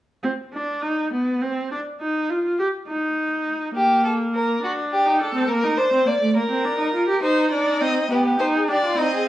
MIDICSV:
0, 0, Header, 1, 4, 480
1, 0, Start_track
1, 0, Tempo, 583658
1, 195, Time_signature, 6, 3, 24, 8
1, 7634, End_track
2, 0, Start_track
2, 0, Title_t, "Violin"
2, 0, Program_c, 0, 40
2, 5936, Note_on_c, 0, 72, 86
2, 6164, Note_off_c, 0, 72, 0
2, 6183, Note_on_c, 0, 74, 78
2, 6419, Note_on_c, 0, 75, 94
2, 6431, Note_off_c, 0, 74, 0
2, 6664, Note_off_c, 0, 75, 0
2, 6673, Note_on_c, 0, 71, 66
2, 6738, Note_off_c, 0, 71, 0
2, 6903, Note_on_c, 0, 72, 82
2, 6969, Note_off_c, 0, 72, 0
2, 7150, Note_on_c, 0, 74, 85
2, 7387, Note_on_c, 0, 75, 87
2, 7399, Note_off_c, 0, 74, 0
2, 7634, Note_off_c, 0, 75, 0
2, 7634, End_track
3, 0, Start_track
3, 0, Title_t, "Violin"
3, 0, Program_c, 1, 40
3, 3091, Note_on_c, 1, 67, 81
3, 3312, Note_off_c, 1, 67, 0
3, 3328, Note_on_c, 1, 69, 64
3, 3394, Note_off_c, 1, 69, 0
3, 3572, Note_on_c, 1, 70, 79
3, 3802, Note_off_c, 1, 70, 0
3, 3816, Note_on_c, 1, 66, 70
3, 3882, Note_off_c, 1, 66, 0
3, 4051, Note_on_c, 1, 67, 80
3, 4276, Note_off_c, 1, 67, 0
3, 4281, Note_on_c, 1, 69, 82
3, 4511, Note_on_c, 1, 70, 95
3, 4524, Note_off_c, 1, 69, 0
3, 4750, Note_on_c, 1, 72, 85
3, 4763, Note_off_c, 1, 70, 0
3, 4995, Note_on_c, 1, 74, 82
3, 5007, Note_off_c, 1, 72, 0
3, 5226, Note_off_c, 1, 74, 0
3, 5231, Note_on_c, 1, 70, 86
3, 5932, Note_off_c, 1, 70, 0
3, 5940, Note_on_c, 1, 63, 77
3, 6650, Note_off_c, 1, 63, 0
3, 6666, Note_on_c, 1, 67, 67
3, 7021, Note_off_c, 1, 67, 0
3, 7026, Note_on_c, 1, 68, 56
3, 7075, Note_off_c, 1, 68, 0
3, 7154, Note_on_c, 1, 67, 67
3, 7270, Note_off_c, 1, 67, 0
3, 7274, Note_on_c, 1, 65, 76
3, 7392, Note_on_c, 1, 63, 69
3, 7404, Note_off_c, 1, 65, 0
3, 7507, Note_off_c, 1, 63, 0
3, 7512, Note_on_c, 1, 68, 56
3, 7561, Note_off_c, 1, 68, 0
3, 7634, End_track
4, 0, Start_track
4, 0, Title_t, "Viola"
4, 0, Program_c, 2, 41
4, 191, Note_on_c, 2, 60, 75
4, 257, Note_off_c, 2, 60, 0
4, 437, Note_on_c, 2, 62, 65
4, 670, Note_on_c, 2, 63, 73
4, 682, Note_off_c, 2, 62, 0
4, 920, Note_off_c, 2, 63, 0
4, 928, Note_on_c, 2, 59, 60
4, 1165, Note_on_c, 2, 60, 68
4, 1177, Note_off_c, 2, 59, 0
4, 1408, Note_off_c, 2, 60, 0
4, 1412, Note_on_c, 2, 62, 63
4, 1478, Note_off_c, 2, 62, 0
4, 1650, Note_on_c, 2, 63, 72
4, 1887, Note_on_c, 2, 65, 73
4, 1900, Note_off_c, 2, 63, 0
4, 2127, Note_off_c, 2, 65, 0
4, 2131, Note_on_c, 2, 67, 70
4, 2197, Note_off_c, 2, 67, 0
4, 2364, Note_on_c, 2, 63, 65
4, 3071, Note_off_c, 2, 63, 0
4, 3081, Note_on_c, 2, 58, 72
4, 3785, Note_off_c, 2, 58, 0
4, 3799, Note_on_c, 2, 62, 61
4, 4157, Note_on_c, 2, 63, 62
4, 4170, Note_off_c, 2, 62, 0
4, 4279, Note_on_c, 2, 62, 61
4, 4292, Note_off_c, 2, 63, 0
4, 4389, Note_off_c, 2, 62, 0
4, 4394, Note_on_c, 2, 60, 66
4, 4513, Note_off_c, 2, 60, 0
4, 4521, Note_on_c, 2, 58, 76
4, 4636, Note_on_c, 2, 63, 67
4, 4648, Note_off_c, 2, 58, 0
4, 4753, Note_on_c, 2, 62, 74
4, 4766, Note_off_c, 2, 63, 0
4, 4871, Note_off_c, 2, 62, 0
4, 4876, Note_on_c, 2, 60, 68
4, 4980, Note_off_c, 2, 60, 0
4, 4985, Note_on_c, 2, 58, 67
4, 5035, Note_off_c, 2, 58, 0
4, 5105, Note_on_c, 2, 57, 70
4, 5224, Note_off_c, 2, 57, 0
4, 5229, Note_on_c, 2, 58, 65
4, 5278, Note_off_c, 2, 58, 0
4, 5341, Note_on_c, 2, 60, 65
4, 5466, Note_on_c, 2, 62, 73
4, 5479, Note_off_c, 2, 60, 0
4, 5573, Note_off_c, 2, 62, 0
4, 5578, Note_on_c, 2, 63, 68
4, 5697, Note_off_c, 2, 63, 0
4, 5702, Note_on_c, 2, 65, 66
4, 5817, Note_off_c, 2, 65, 0
4, 5821, Note_on_c, 2, 67, 81
4, 5942, Note_off_c, 2, 67, 0
4, 5948, Note_on_c, 2, 63, 73
4, 6176, Note_off_c, 2, 63, 0
4, 6181, Note_on_c, 2, 62, 71
4, 6420, Note_on_c, 2, 60, 67
4, 6433, Note_off_c, 2, 62, 0
4, 6659, Note_off_c, 2, 60, 0
4, 6664, Note_on_c, 2, 59, 62
4, 6899, Note_off_c, 2, 59, 0
4, 6904, Note_on_c, 2, 63, 74
4, 7141, Note_on_c, 2, 62, 64
4, 7154, Note_off_c, 2, 63, 0
4, 7380, Note_off_c, 2, 62, 0
4, 7385, Note_on_c, 2, 60, 71
4, 7634, Note_off_c, 2, 60, 0
4, 7634, End_track
0, 0, End_of_file